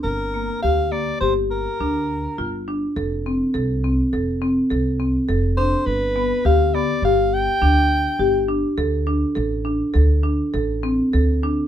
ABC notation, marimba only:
X:1
M:5/4
L:1/8
Q:1/4=103
K:Gdor
V:1 name="Marimba"
z B, G B, G2 D2 F D | A C A C A C A C A D | z =B, G B, G2 D2 G D | A D A D A D A C A D |]